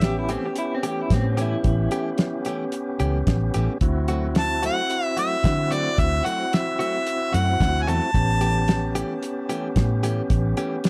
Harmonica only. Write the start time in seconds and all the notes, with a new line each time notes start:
Already playing: E5
4.38 A5
4.66 F#5
5.19 E5
5.73 D5
5.99 E5
6.25 F#5
6.54 E5
6.80 E5
7.34 F#5
7.83 G#5
7.89 A5